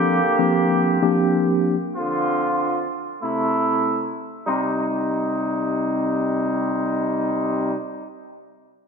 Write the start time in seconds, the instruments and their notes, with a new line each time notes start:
Already playing: horn section D3 A#3 G4, tine electric piano F3 A#3 C4 D4 G4
0.39 tine electric piano F3 A#3 C4 D4 G4
1.02 tine electric piano F3 A#3 C4 D4 G4
1.96 horn section D3 C4 F4
3.22 horn section C3 A3 E4
4.46 horn section C3 G3 D#4